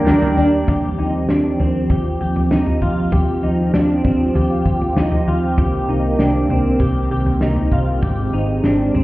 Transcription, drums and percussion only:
0.07 snare loud
0.07 tambourine medium
0.22 floor tom medium
0.37 tambourine medium
0.68 kick medium
0.68 floor tom medium
1.29 snare medium
1.60 floor tom medium
1.90 kick medium
1.90 floor tom medium
2.36 floor tom medium
2.51 snare loud
2.67 floor tom medium
2.82 kick medium
3.12 kick medium
3.12 floor tom medium
3.74 snare loud
4.05 kick medium
4.05 floor tom medium
4.35 floor tom medium
4.66 kick medium
4.82 floor tom soft
4.97 snare loud
5.12 floor tom medium
5.58 kick medium
5.58 floor tom medium
6.19 snare loud
6.50 floor tom medium
6.80 kick medium
6.80 floor tom medium
7.26 floor tom medium
7.41 snare loud
7.56 floor tom medium
7.72 kick medium
8.03 kick medium
8.03 floor tom medium
8.64 snare medium
8.95 floor tom medium

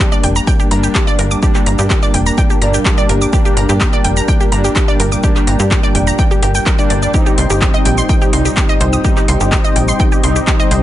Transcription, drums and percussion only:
0.12 shaker soft
0.24 open hi-hat loud
0.36 shaker medium
0.47 kick loud
0.47 shaker medium
0.60 shaker soft
0.71 open hi-hat loud
0.83 shaker medium
0.95 kick loud
0.95 clap loud
0.95 shaker medium
1.07 shaker soft
1.19 open hi-hat loud
1.31 shaker medium
1.43 kick loud
1.43 shaker medium
1.55 clap soft
1.55 shaker soft
1.66 open hi-hat loud
1.79 shaker medium
1.90 kick loud
1.90 clap loud
1.90 shaker medium
2.03 shaker soft
2.14 open hi-hat loud
2.26 shaker medium
2.38 kick loud
2.38 shaker medium
2.50 shaker soft
2.62 open hi-hat loud
2.74 shaker medium
2.85 kick loud
2.85 clap loud
2.85 shaker medium
2.98 shaker soft
3.09 open hi-hat loud
3.22 shaker medium
3.33 kick loud
3.33 shaker medium
3.45 shaker soft
3.57 open hi-hat loud
3.69 shaker medium
3.81 kick loud
3.81 clap loud
3.81 shaker soft
3.93 shaker soft
4.04 open hi-hat loud
4.17 shaker medium
4.28 kick loud
4.28 shaker medium
4.41 shaker soft
4.52 open hi-hat loud
4.64 shaker medium
4.76 kick loud
4.76 clap loud
4.76 shaker medium
4.88 shaker soft
5.00 open hi-hat loud
5.12 shaker medium
5.23 kick loud
5.23 shaker medium
5.36 clap soft
5.36 shaker soft
5.47 open hi-hat loud
5.60 shaker medium
5.71 kick loud
5.71 clap loud
5.71 shaker medium
5.83 shaker soft
5.95 open hi-hat loud
6.07 shaker medium
6.19 kick loud
6.19 shaker medium
6.31 shaker soft
6.43 open hi-hat loud
6.55 shaker medium
6.66 kick loud
6.66 clap loud
6.66 shaker medium
6.79 shaker soft
6.90 open hi-hat loud
7.02 shaker medium
7.14 kick loud
7.14 shaker medium
7.26 shaker soft
7.38 open hi-hat loud
7.50 shaker medium
7.62 kick loud
7.62 clap loud
7.62 shaker medium
7.74 shaker soft
7.85 open hi-hat loud
7.98 shaker medium
8.09 kick loud
8.09 shaker medium
8.22 shaker soft
8.33 open hi-hat loud
8.45 shaker medium
8.57 kick loud
8.57 clap loud
8.57 shaker medium
8.69 shaker soft
8.81 open hi-hat loud
8.93 shaker medium
9.04 kick loud
9.04 shaker medium
9.17 clap soft
9.17 shaker soft
9.28 open hi-hat loud
9.41 shaker medium
9.52 kick loud
9.52 clap loud
9.52 shaker medium
9.64 shaker soft
9.76 open hi-hat loud
9.88 shaker medium
10.00 kick loud
10.00 shaker medium
10.12 shaker soft
10.24 open hi-hat loud
10.36 shaker medium
10.47 kick loud
10.47 clap loud
10.47 shaker medium
10.60 shaker soft
10.71 open hi-hat loud

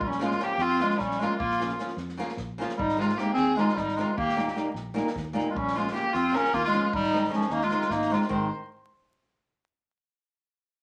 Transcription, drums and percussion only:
0.01 kick loud
0.11 snare soft
0.20 snare soft
0.31 snare soft
0.40 snare soft
0.59 snare soft
0.80 snare soft
0.91 snare soft
0.99 kick medium
0.99 snare soft
1.11 snare soft
1.21 snare soft
1.40 kick loud
1.51 snare soft
1.60 snare soft
1.69 snare soft
1.79 snare soft
1.88 snare soft
1.97 snare soft
2.09 snare soft
2.20 snare soft
2.29 snare soft
2.37 kick medium
2.37 snare soft
2.61 snare soft
2.69 snare soft
2.79 kick loud
2.89 snare soft
3.00 snare soft
3.09 snare soft
3.18 snare soft
3.37 snare soft
3.58 snare soft
3.69 snare soft
3.77 kick medium
3.77 snare soft
3.88 snare soft
3.99 snare soft
4.18 kick loud
4.29 snare soft
4.38 snare soft
4.47 snare soft
4.57 snare soft
4.75 snare soft
4.97 snare soft
5.07 snare soft
5.16 kick medium
5.16 snare soft
5.38 snare soft
5.57 kick loud
5.68 snare soft
5.78 snare soft
5.87 snare soft
5.95 snare soft
6.14 snare soft
6.35 snare soft
6.44 snare soft
6.53 kick medium
6.53 snare soft
6.64 snare soft
6.93 kick loud
7.04 snare soft
7.15 snare soft
7.24 snare soft
7.33 snare soft
7.41 snare soft
7.50 snare soft
7.61 snare soft
7.71 snare soft
7.81 snare soft
7.90 kick medium
7.90 snare soft
8.02 snare soft
8.13 snare soft
8.22 snare soft
8.31 kick loud

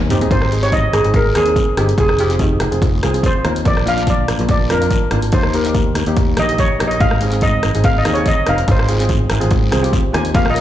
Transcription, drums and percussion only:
0.01 high tom medium
0.10 closed hi-hat medium
0.10 mid tom medium
0.10 short guiro medium
0.21 closed hi-hat medium
0.21 floor tom medium
0.31 kick loud
0.31 closed hi-hat medium
0.31 long guiro medium
0.42 cross-stick medium
0.52 closed hi-hat medium
0.63 closed hi-hat medium
0.72 kick medium
0.72 closed hi-hat medium
0.72 short guiro medium
0.93 cross-stick medium
0.93 closed hi-hat medium
0.93 short guiro medium
1.05 closed hi-hat medium
1.14 kick loud
1.14 closed hi-hat medium
1.14 long guiro medium
1.35 cross-stick medium
1.35 closed hi-hat medium
1.35 short guiro medium
1.46 closed hi-hat medium
1.56 kick medium
1.56 closed hi-hat medium
1.56 short guiro medium
1.77 cross-stick medium
1.77 closed hi-hat medium
1.89 closed hi-hat medium
1.98 kick loud
1.98 closed hi-hat medium
1.98 long guiro medium
2.09 cross-stick medium
2.19 closed hi-hat medium
2.30 closed hi-hat medium
2.39 kick medium
2.39 closed hi-hat medium
2.39 short guiro medium
2.60 cross-stick medium
2.60 closed hi-hat medium
2.72 closed hi-hat medium
2.82 kick loud
2.82 closed hi-hat medium
2.82 long guiro medium
3.03 cross-stick medium
3.03 closed hi-hat medium
3.03 short guiro medium
3.14 closed hi-hat medium
3.23 kick medium
3.23 closed hi-hat medium
3.23 short guiro medium
3.45 cross-stick medium
3.45 closed hi-hat medium
3.56 closed hi-hat medium
3.65 kick loud
3.65 closed hi-hat medium
3.65 long guiro medium
3.77 cross-stick medium
3.87 closed hi-hat medium
3.98 closed hi-hat medium
4.07 kick medium
4.07 closed hi-hat medium
4.07 short guiro medium
4.28 cross-stick medium
4.28 closed hi-hat medium
4.28 short guiro medium
4.39 closed hi-hat medium
4.49 kick loud
4.49 closed hi-hat medium
4.49 long guiro medium
4.70 cross-stick medium
4.70 closed hi-hat medium
4.70 short guiro medium
4.82 closed hi-hat medium
4.91 kick medium
4.91 closed hi-hat medium
4.91 short guiro medium
5.11 cross-stick medium
5.11 closed hi-hat medium
5.22 closed hi-hat medium
5.32 kick loud
5.32 closed hi-hat medium
5.32 long guiro medium
5.43 cross-stick medium
5.54 closed hi-hat medium
5.65 closed hi-hat medium
5.75 kick medium
5.75 closed hi-hat medium
5.75 short guiro medium
5.95 cross-stick medium
5.95 closed hi-hat medium
5.95 short guiro medium
6.06 closed hi-hat medium
6.17 kick loud
6.17 closed hi-hat medium
6.17 long guiro medium
6.37 cross-stick medium
6.37 closed hi-hat medium
6.37 short guiro medium
6.49 closed hi-hat medium
6.58 kick medium
6.58 closed hi-hat medium
6.58 short guiro medium
6.80 cross-stick medium
6.80 closed hi-hat medium
6.91 closed hi-hat medium
7.01 kick loud
7.01 closed hi-hat medium
7.01 long guiro medium
7.11 cross-stick medium
7.21 closed hi-hat medium
7.32 closed hi-hat medium
7.41 kick medium
7.41 closed hi-hat medium
7.41 short guiro medium
7.63 cross-stick medium
7.63 closed hi-hat medium
7.63 short guiro medium
7.75 closed hi-hat medium
7.84 kick loud
7.84 closed hi-hat medium
7.84 long guiro medium
8.05 cross-stick medium
8.05 closed hi-hat medium
8.05 short guiro medium
8.15 closed hi-hat medium
8.26 kick medium
8.26 closed hi-hat medium
8.26 short guiro medium
8.47 cross-stick medium
8.47 closed hi-hat medium
8.58 closed hi-hat medium
8.68 kick loud
8.68 closed hi-hat medium
8.68 long guiro medium
8.79 cross-stick medium
8.89 closed hi-hat medium
9.00 closed hi-hat medium
9.09 kick medium
9.09 closed hi-hat medium
9.09 short guiro medium
9.30 cross-stick medium
9.30 closed hi-hat medium
9.30 short guiro medium
9.41 closed hi-hat medium
9.51 kick loud
9.51 closed hi-hat medium
9.51 long guiro medium
9.72 cross-stick medium
9.72 closed hi-hat medium
9.72 short guiro medium
9.84 closed hi-hat medium
9.93 kick medium
9.93 closed hi-hat medium
9.93 short guiro medium
10.14 cross-stick medium
10.14 closed hi-hat medium
10.25 closed hi-hat medium
10.34 kick loud
10.34 closed hi-hat medium
10.34 long guiro medium
10.46 cross-stick medium
10.56 closed hi-hat medium

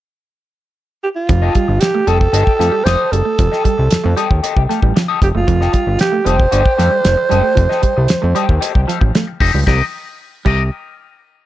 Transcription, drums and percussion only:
1.29 kick loud
1.29 closed hi-hat medium
1.55 kick medium
1.55 closed hi-hat medium
1.81 snare medium
1.81 closed hi-hat loud
2.07 closed hi-hat medium
2.21 kick medium
2.34 closed hi-hat loud
2.47 kick medium
2.61 snare soft
2.61 closed hi-hat medium
2.86 snare loud
2.86 closed hi-hat medium
3.13 closed hi-hat medium
3.39 kick loud
3.39 closed hi-hat medium
3.53 snare soft
3.65 kick medium
3.65 closed hi-hat medium
3.90 snare loud
3.90 closed hi-hat loud
4.17 closed hi-hat medium
4.31 kick medium
4.44 closed hi-hat loud
4.57 kick medium
4.71 snare soft
4.71 closed hi-hat medium
4.82 kick medium
4.96 snare loud
4.96 closed hi-hat medium
5.22 kick loud
5.22 closed hi-hat medium
5.48 kick loud
5.48 closed hi-hat medium
5.61 snare soft
5.73 kick medium
5.73 closed hi-hat medium
5.99 snare loud
5.99 closed hi-hat loud
6.26 closed hi-hat medium
6.40 kick medium
6.52 closed hi-hat loud
6.66 kick loud
6.79 snare soft
6.79 closed hi-hat medium
7.05 snare loud
7.05 closed hi-hat medium
7.31 closed hi-hat medium
7.57 kick loud
7.57 closed hi-hat medium
7.71 snare soft
7.83 kick medium
7.83 closed hi-hat medium
8.08 snare loud
8.08 closed hi-hat loud
8.36 closed hi-hat medium
8.49 kick medium
8.62 closed hi-hat loud
8.75 kick medium
8.89 snare soft
8.89 closed hi-hat medium
9.01 kick medium
9.15 snare loud
9.15 closed hi-hat medium
9.40 kick medium
9.40 open hi-hat medium
9.67 kick loud
9.67 snare medium
10.46 kick medium
10.46 crash medium

